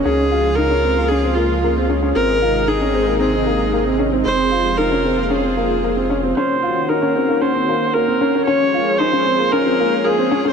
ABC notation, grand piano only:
X:1
M:4/4
L:1/16
Q:1/4=114
K:Ebdor
V:1 name="Grand piano"
D2 F2 E D C B, D C B,2 B, C D D | C2 F2 E D C B, C C B,2 B, C D C | C2 F2 E D C B, D C B,2 B, C D C | D2 F2 E D C B, D C B,2 B, C D D |
D2 F2 E D C B, D C B,2 B, C D D |]